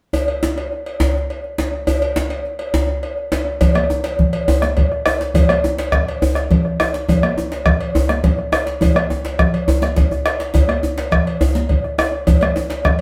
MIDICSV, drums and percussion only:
0, 0, Header, 1, 4, 480
1, 0, Start_track
1, 0, Tempo, 288878
1, 224, Time_signature, 12, 3, 24, 8
1, 21621, End_track
2, 0, Start_track
2, 0, Title_t, "Bombo"
2, 6005, Note_on_c, 9, 43, 85
2, 6171, Note_off_c, 9, 43, 0
2, 6239, Note_on_c, 9, 37, 66
2, 6405, Note_off_c, 9, 37, 0
2, 6963, Note_on_c, 9, 43, 78
2, 7129, Note_off_c, 9, 43, 0
2, 7677, Note_on_c, 9, 37, 64
2, 7843, Note_off_c, 9, 37, 0
2, 7933, Note_on_c, 9, 43, 87
2, 8099, Note_off_c, 9, 43, 0
2, 8170, Note_on_c, 9, 37, 29
2, 8336, Note_off_c, 9, 37, 0
2, 8401, Note_on_c, 9, 37, 95
2, 8567, Note_off_c, 9, 37, 0
2, 8878, Note_on_c, 9, 43, 91
2, 9044, Note_off_c, 9, 43, 0
2, 9124, Note_on_c, 9, 37, 72
2, 9291, Note_off_c, 9, 37, 0
2, 9840, Note_on_c, 9, 37, 88
2, 9840, Note_on_c, 9, 43, 85
2, 10006, Note_off_c, 9, 37, 0
2, 10006, Note_off_c, 9, 43, 0
2, 10557, Note_on_c, 9, 37, 61
2, 10723, Note_off_c, 9, 37, 0
2, 10811, Note_on_c, 9, 43, 87
2, 10977, Note_off_c, 9, 43, 0
2, 11050, Note_on_c, 9, 37, 31
2, 11216, Note_off_c, 9, 37, 0
2, 11296, Note_on_c, 9, 37, 92
2, 11462, Note_off_c, 9, 37, 0
2, 11774, Note_on_c, 9, 43, 86
2, 11940, Note_off_c, 9, 43, 0
2, 12017, Note_on_c, 9, 37, 77
2, 12183, Note_off_c, 9, 37, 0
2, 12722, Note_on_c, 9, 37, 80
2, 12722, Note_on_c, 9, 43, 82
2, 12888, Note_off_c, 9, 37, 0
2, 12888, Note_off_c, 9, 43, 0
2, 13446, Note_on_c, 9, 37, 62
2, 13613, Note_off_c, 9, 37, 0
2, 13688, Note_on_c, 9, 43, 92
2, 13854, Note_off_c, 9, 43, 0
2, 13936, Note_on_c, 9, 37, 28
2, 14102, Note_off_c, 9, 37, 0
2, 14168, Note_on_c, 9, 37, 83
2, 14334, Note_off_c, 9, 37, 0
2, 14652, Note_on_c, 9, 37, 26
2, 14652, Note_on_c, 9, 43, 78
2, 14819, Note_off_c, 9, 37, 0
2, 14819, Note_off_c, 9, 43, 0
2, 14889, Note_on_c, 9, 37, 72
2, 15056, Note_off_c, 9, 37, 0
2, 15606, Note_on_c, 9, 37, 78
2, 15606, Note_on_c, 9, 43, 77
2, 15772, Note_off_c, 9, 37, 0
2, 15772, Note_off_c, 9, 43, 0
2, 16332, Note_on_c, 9, 37, 60
2, 16498, Note_off_c, 9, 37, 0
2, 16567, Note_on_c, 9, 43, 83
2, 16733, Note_off_c, 9, 43, 0
2, 16814, Note_on_c, 9, 37, 28
2, 16981, Note_off_c, 9, 37, 0
2, 17041, Note_on_c, 9, 37, 86
2, 17207, Note_off_c, 9, 37, 0
2, 17295, Note_on_c, 9, 37, 25
2, 17461, Note_off_c, 9, 37, 0
2, 17522, Note_on_c, 9, 43, 78
2, 17688, Note_off_c, 9, 43, 0
2, 17761, Note_on_c, 9, 37, 62
2, 17927, Note_off_c, 9, 37, 0
2, 18481, Note_on_c, 9, 37, 83
2, 18481, Note_on_c, 9, 43, 78
2, 18647, Note_off_c, 9, 37, 0
2, 18647, Note_off_c, 9, 43, 0
2, 19437, Note_on_c, 9, 43, 87
2, 19603, Note_off_c, 9, 43, 0
2, 19679, Note_on_c, 9, 37, 29
2, 19845, Note_off_c, 9, 37, 0
2, 19919, Note_on_c, 9, 37, 92
2, 20085, Note_off_c, 9, 37, 0
2, 20398, Note_on_c, 9, 43, 89
2, 20564, Note_off_c, 9, 43, 0
2, 20648, Note_on_c, 9, 37, 72
2, 20814, Note_off_c, 9, 37, 0
2, 21352, Note_on_c, 9, 37, 81
2, 21352, Note_on_c, 9, 43, 88
2, 21518, Note_off_c, 9, 37, 0
2, 21518, Note_off_c, 9, 43, 0
2, 21621, End_track
3, 0, Start_track
3, 0, Title_t, "Djembe"
3, 219, Note_on_c, 9, 64, 54
3, 385, Note_off_c, 9, 64, 0
3, 465, Note_on_c, 9, 62, 18
3, 631, Note_off_c, 9, 62, 0
3, 710, Note_on_c, 9, 62, 59
3, 710, Note_on_c, 9, 63, 60
3, 876, Note_off_c, 9, 62, 0
3, 876, Note_off_c, 9, 63, 0
3, 1193, Note_on_c, 9, 62, 19
3, 1359, Note_off_c, 9, 62, 0
3, 1433, Note_on_c, 9, 62, 17
3, 1599, Note_off_c, 9, 62, 0
3, 1663, Note_on_c, 9, 62, 60
3, 1663, Note_on_c, 9, 63, 65
3, 1663, Note_on_c, 9, 64, 60
3, 1829, Note_off_c, 9, 62, 0
3, 1829, Note_off_c, 9, 63, 0
3, 1829, Note_off_c, 9, 64, 0
3, 1913, Note_on_c, 9, 62, 18
3, 2079, Note_off_c, 9, 62, 0
3, 2395, Note_on_c, 9, 62, 17
3, 2561, Note_off_c, 9, 62, 0
3, 2632, Note_on_c, 9, 62, 62
3, 2632, Note_on_c, 9, 63, 62
3, 2798, Note_off_c, 9, 62, 0
3, 2798, Note_off_c, 9, 63, 0
3, 3109, Note_on_c, 9, 64, 62
3, 3276, Note_off_c, 9, 64, 0
3, 3352, Note_on_c, 9, 62, 21
3, 3519, Note_off_c, 9, 62, 0
3, 3590, Note_on_c, 9, 62, 62
3, 3590, Note_on_c, 9, 63, 66
3, 3757, Note_off_c, 9, 62, 0
3, 3757, Note_off_c, 9, 63, 0
3, 4077, Note_on_c, 9, 62, 20
3, 4243, Note_off_c, 9, 62, 0
3, 4317, Note_on_c, 9, 62, 20
3, 4483, Note_off_c, 9, 62, 0
3, 4551, Note_on_c, 9, 62, 66
3, 4551, Note_on_c, 9, 63, 63
3, 4551, Note_on_c, 9, 64, 62
3, 4717, Note_off_c, 9, 62, 0
3, 4717, Note_off_c, 9, 63, 0
3, 4717, Note_off_c, 9, 64, 0
3, 4793, Note_on_c, 9, 62, 18
3, 4959, Note_off_c, 9, 62, 0
3, 5272, Note_on_c, 9, 62, 17
3, 5438, Note_off_c, 9, 62, 0
3, 5513, Note_on_c, 9, 62, 63
3, 5513, Note_on_c, 9, 63, 61
3, 5679, Note_off_c, 9, 62, 0
3, 5679, Note_off_c, 9, 63, 0
3, 5997, Note_on_c, 9, 62, 21
3, 5997, Note_on_c, 9, 64, 66
3, 6163, Note_off_c, 9, 62, 0
3, 6163, Note_off_c, 9, 64, 0
3, 6479, Note_on_c, 9, 62, 21
3, 6479, Note_on_c, 9, 63, 65
3, 6645, Note_off_c, 9, 62, 0
3, 6645, Note_off_c, 9, 63, 0
3, 6714, Note_on_c, 9, 62, 52
3, 6880, Note_off_c, 9, 62, 0
3, 7445, Note_on_c, 9, 63, 74
3, 7445, Note_on_c, 9, 64, 71
3, 7611, Note_off_c, 9, 63, 0
3, 7611, Note_off_c, 9, 64, 0
3, 7683, Note_on_c, 9, 62, 50
3, 7849, Note_off_c, 9, 62, 0
3, 8169, Note_on_c, 9, 62, 18
3, 8335, Note_off_c, 9, 62, 0
3, 8415, Note_on_c, 9, 63, 65
3, 8581, Note_off_c, 9, 63, 0
3, 8654, Note_on_c, 9, 62, 52
3, 8820, Note_off_c, 9, 62, 0
3, 8889, Note_on_c, 9, 62, 23
3, 8889, Note_on_c, 9, 64, 74
3, 9055, Note_off_c, 9, 62, 0
3, 9055, Note_off_c, 9, 64, 0
3, 9374, Note_on_c, 9, 62, 24
3, 9374, Note_on_c, 9, 63, 71
3, 9540, Note_off_c, 9, 62, 0
3, 9540, Note_off_c, 9, 63, 0
3, 9612, Note_on_c, 9, 62, 59
3, 9778, Note_off_c, 9, 62, 0
3, 10337, Note_on_c, 9, 63, 69
3, 10337, Note_on_c, 9, 64, 77
3, 10504, Note_off_c, 9, 63, 0
3, 10504, Note_off_c, 9, 64, 0
3, 10570, Note_on_c, 9, 62, 53
3, 10737, Note_off_c, 9, 62, 0
3, 11054, Note_on_c, 9, 62, 18
3, 11220, Note_off_c, 9, 62, 0
3, 11298, Note_on_c, 9, 63, 64
3, 11464, Note_off_c, 9, 63, 0
3, 11536, Note_on_c, 9, 62, 49
3, 11702, Note_off_c, 9, 62, 0
3, 11780, Note_on_c, 9, 62, 22
3, 11780, Note_on_c, 9, 64, 69
3, 11946, Note_off_c, 9, 62, 0
3, 11946, Note_off_c, 9, 64, 0
3, 12255, Note_on_c, 9, 62, 22
3, 12255, Note_on_c, 9, 63, 67
3, 12421, Note_off_c, 9, 62, 0
3, 12421, Note_off_c, 9, 63, 0
3, 12491, Note_on_c, 9, 62, 53
3, 12658, Note_off_c, 9, 62, 0
3, 13210, Note_on_c, 9, 63, 67
3, 13210, Note_on_c, 9, 64, 64
3, 13376, Note_off_c, 9, 63, 0
3, 13376, Note_off_c, 9, 64, 0
3, 13447, Note_on_c, 9, 62, 47
3, 13613, Note_off_c, 9, 62, 0
3, 13927, Note_on_c, 9, 62, 19
3, 14093, Note_off_c, 9, 62, 0
3, 14161, Note_on_c, 9, 63, 66
3, 14327, Note_off_c, 9, 63, 0
3, 14401, Note_on_c, 9, 62, 50
3, 14567, Note_off_c, 9, 62, 0
3, 14639, Note_on_c, 9, 64, 64
3, 14805, Note_off_c, 9, 64, 0
3, 15125, Note_on_c, 9, 63, 63
3, 15291, Note_off_c, 9, 63, 0
3, 15365, Note_on_c, 9, 62, 55
3, 15531, Note_off_c, 9, 62, 0
3, 16082, Note_on_c, 9, 63, 72
3, 16082, Note_on_c, 9, 64, 71
3, 16248, Note_off_c, 9, 63, 0
3, 16248, Note_off_c, 9, 64, 0
3, 16318, Note_on_c, 9, 62, 53
3, 16484, Note_off_c, 9, 62, 0
3, 16560, Note_on_c, 9, 64, 39
3, 16727, Note_off_c, 9, 64, 0
3, 16799, Note_on_c, 9, 64, 39
3, 16966, Note_off_c, 9, 64, 0
3, 17041, Note_on_c, 9, 62, 53
3, 17207, Note_off_c, 9, 62, 0
3, 17279, Note_on_c, 9, 62, 55
3, 17445, Note_off_c, 9, 62, 0
3, 17515, Note_on_c, 9, 62, 24
3, 17515, Note_on_c, 9, 64, 74
3, 17681, Note_off_c, 9, 62, 0
3, 17681, Note_off_c, 9, 64, 0
3, 17997, Note_on_c, 9, 62, 23
3, 17997, Note_on_c, 9, 63, 71
3, 18163, Note_off_c, 9, 62, 0
3, 18163, Note_off_c, 9, 63, 0
3, 18238, Note_on_c, 9, 62, 61
3, 18405, Note_off_c, 9, 62, 0
3, 18956, Note_on_c, 9, 63, 78
3, 18956, Note_on_c, 9, 64, 77
3, 19123, Note_off_c, 9, 63, 0
3, 19123, Note_off_c, 9, 64, 0
3, 19194, Note_on_c, 9, 62, 56
3, 19360, Note_off_c, 9, 62, 0
3, 19678, Note_on_c, 9, 62, 21
3, 19844, Note_off_c, 9, 62, 0
3, 19913, Note_on_c, 9, 63, 73
3, 20079, Note_off_c, 9, 63, 0
3, 20390, Note_on_c, 9, 62, 24
3, 20390, Note_on_c, 9, 64, 75
3, 20556, Note_off_c, 9, 62, 0
3, 20556, Note_off_c, 9, 64, 0
3, 20866, Note_on_c, 9, 63, 73
3, 21032, Note_off_c, 9, 63, 0
3, 21108, Note_on_c, 9, 62, 54
3, 21274, Note_off_c, 9, 62, 0
3, 21621, End_track
4, 0, Start_track
4, 0, Title_t, "Drums"
4, 225, Note_on_c, 9, 56, 53
4, 391, Note_off_c, 9, 56, 0
4, 466, Note_on_c, 9, 56, 41
4, 632, Note_off_c, 9, 56, 0
4, 957, Note_on_c, 9, 56, 42
4, 1123, Note_off_c, 9, 56, 0
4, 1435, Note_on_c, 9, 56, 37
4, 1601, Note_off_c, 9, 56, 0
4, 1683, Note_on_c, 9, 56, 40
4, 1849, Note_off_c, 9, 56, 0
4, 2163, Note_on_c, 9, 56, 36
4, 2329, Note_off_c, 9, 56, 0
4, 2639, Note_on_c, 9, 56, 41
4, 2805, Note_off_c, 9, 56, 0
4, 3110, Note_on_c, 9, 56, 56
4, 3276, Note_off_c, 9, 56, 0
4, 3357, Note_on_c, 9, 56, 45
4, 3523, Note_off_c, 9, 56, 0
4, 3826, Note_on_c, 9, 56, 41
4, 3992, Note_off_c, 9, 56, 0
4, 4305, Note_on_c, 9, 56, 44
4, 4471, Note_off_c, 9, 56, 0
4, 4555, Note_on_c, 9, 56, 43
4, 4721, Note_off_c, 9, 56, 0
4, 5034, Note_on_c, 9, 56, 43
4, 5200, Note_off_c, 9, 56, 0
4, 5517, Note_on_c, 9, 56, 46
4, 5683, Note_off_c, 9, 56, 0
4, 5995, Note_on_c, 9, 56, 69
4, 6005, Note_on_c, 9, 64, 70
4, 6161, Note_off_c, 9, 56, 0
4, 6171, Note_off_c, 9, 64, 0
4, 6234, Note_on_c, 9, 56, 58
4, 6239, Note_on_c, 9, 63, 52
4, 6400, Note_off_c, 9, 56, 0
4, 6405, Note_off_c, 9, 63, 0
4, 6711, Note_on_c, 9, 56, 55
4, 6877, Note_off_c, 9, 56, 0
4, 6961, Note_on_c, 9, 63, 20
4, 6961, Note_on_c, 9, 64, 60
4, 7127, Note_off_c, 9, 63, 0
4, 7127, Note_off_c, 9, 64, 0
4, 7195, Note_on_c, 9, 56, 52
4, 7361, Note_off_c, 9, 56, 0
4, 7444, Note_on_c, 9, 56, 52
4, 7611, Note_off_c, 9, 56, 0
4, 7686, Note_on_c, 9, 63, 49
4, 7853, Note_off_c, 9, 63, 0
4, 7920, Note_on_c, 9, 56, 53
4, 8086, Note_off_c, 9, 56, 0
4, 8406, Note_on_c, 9, 56, 54
4, 8572, Note_off_c, 9, 56, 0
4, 8884, Note_on_c, 9, 64, 62
4, 8889, Note_on_c, 9, 56, 63
4, 9050, Note_off_c, 9, 64, 0
4, 9055, Note_off_c, 9, 56, 0
4, 9132, Note_on_c, 9, 63, 58
4, 9139, Note_on_c, 9, 56, 55
4, 9298, Note_off_c, 9, 63, 0
4, 9305, Note_off_c, 9, 56, 0
4, 9620, Note_on_c, 9, 56, 49
4, 9786, Note_off_c, 9, 56, 0
4, 9856, Note_on_c, 9, 63, 19
4, 9856, Note_on_c, 9, 64, 69
4, 10022, Note_off_c, 9, 63, 0
4, 10022, Note_off_c, 9, 64, 0
4, 10110, Note_on_c, 9, 56, 47
4, 10277, Note_off_c, 9, 56, 0
4, 10344, Note_on_c, 9, 56, 45
4, 10511, Note_off_c, 9, 56, 0
4, 10811, Note_on_c, 9, 64, 72
4, 10821, Note_on_c, 9, 56, 42
4, 10977, Note_off_c, 9, 64, 0
4, 10987, Note_off_c, 9, 56, 0
4, 11298, Note_on_c, 9, 56, 46
4, 11465, Note_off_c, 9, 56, 0
4, 11773, Note_on_c, 9, 64, 64
4, 11782, Note_on_c, 9, 56, 54
4, 11939, Note_off_c, 9, 64, 0
4, 11949, Note_off_c, 9, 56, 0
4, 12018, Note_on_c, 9, 63, 55
4, 12019, Note_on_c, 9, 56, 44
4, 12185, Note_off_c, 9, 63, 0
4, 12186, Note_off_c, 9, 56, 0
4, 12497, Note_on_c, 9, 56, 45
4, 12663, Note_off_c, 9, 56, 0
4, 12731, Note_on_c, 9, 63, 19
4, 12731, Note_on_c, 9, 64, 65
4, 12897, Note_off_c, 9, 63, 0
4, 12897, Note_off_c, 9, 64, 0
4, 12969, Note_on_c, 9, 56, 44
4, 13135, Note_off_c, 9, 56, 0
4, 13213, Note_on_c, 9, 56, 42
4, 13379, Note_off_c, 9, 56, 0
4, 13454, Note_on_c, 9, 63, 55
4, 13620, Note_off_c, 9, 63, 0
4, 13689, Note_on_c, 9, 64, 68
4, 13690, Note_on_c, 9, 56, 43
4, 13855, Note_off_c, 9, 64, 0
4, 13856, Note_off_c, 9, 56, 0
4, 14174, Note_on_c, 9, 56, 44
4, 14340, Note_off_c, 9, 56, 0
4, 14636, Note_on_c, 9, 64, 64
4, 14657, Note_on_c, 9, 56, 54
4, 14803, Note_off_c, 9, 64, 0
4, 14823, Note_off_c, 9, 56, 0
4, 14873, Note_on_c, 9, 63, 52
4, 14895, Note_on_c, 9, 56, 45
4, 15040, Note_off_c, 9, 63, 0
4, 15061, Note_off_c, 9, 56, 0
4, 15379, Note_on_c, 9, 56, 45
4, 15545, Note_off_c, 9, 56, 0
4, 15608, Note_on_c, 9, 64, 67
4, 15774, Note_off_c, 9, 64, 0
4, 15851, Note_on_c, 9, 56, 46
4, 16017, Note_off_c, 9, 56, 0
4, 16095, Note_on_c, 9, 56, 42
4, 16261, Note_off_c, 9, 56, 0
4, 16313, Note_on_c, 9, 63, 52
4, 16479, Note_off_c, 9, 63, 0
4, 16557, Note_on_c, 9, 64, 70
4, 16574, Note_on_c, 9, 56, 45
4, 16723, Note_off_c, 9, 64, 0
4, 16741, Note_off_c, 9, 56, 0
4, 17044, Note_on_c, 9, 56, 46
4, 17210, Note_off_c, 9, 56, 0
4, 17510, Note_on_c, 9, 64, 60
4, 17523, Note_on_c, 9, 56, 52
4, 17676, Note_off_c, 9, 64, 0
4, 17689, Note_off_c, 9, 56, 0
4, 17751, Note_on_c, 9, 63, 56
4, 17766, Note_on_c, 9, 56, 43
4, 17917, Note_off_c, 9, 63, 0
4, 17932, Note_off_c, 9, 56, 0
4, 18252, Note_on_c, 9, 56, 45
4, 18418, Note_off_c, 9, 56, 0
4, 18472, Note_on_c, 9, 63, 21
4, 18472, Note_on_c, 9, 64, 67
4, 18638, Note_off_c, 9, 63, 0
4, 18638, Note_off_c, 9, 64, 0
4, 18729, Note_on_c, 9, 56, 43
4, 18895, Note_off_c, 9, 56, 0
4, 18958, Note_on_c, 9, 56, 44
4, 19124, Note_off_c, 9, 56, 0
4, 19190, Note_on_c, 9, 63, 56
4, 19356, Note_off_c, 9, 63, 0
4, 19429, Note_on_c, 9, 56, 42
4, 19595, Note_off_c, 9, 56, 0
4, 19916, Note_on_c, 9, 56, 47
4, 20082, Note_off_c, 9, 56, 0
4, 20387, Note_on_c, 9, 56, 54
4, 20388, Note_on_c, 9, 64, 71
4, 20553, Note_off_c, 9, 56, 0
4, 20554, Note_off_c, 9, 64, 0
4, 20622, Note_on_c, 9, 56, 47
4, 20639, Note_on_c, 9, 63, 62
4, 20789, Note_off_c, 9, 56, 0
4, 20805, Note_off_c, 9, 63, 0
4, 21098, Note_on_c, 9, 56, 42
4, 21264, Note_off_c, 9, 56, 0
4, 21346, Note_on_c, 9, 63, 20
4, 21346, Note_on_c, 9, 64, 63
4, 21512, Note_off_c, 9, 63, 0
4, 21512, Note_off_c, 9, 64, 0
4, 21621, End_track
0, 0, End_of_file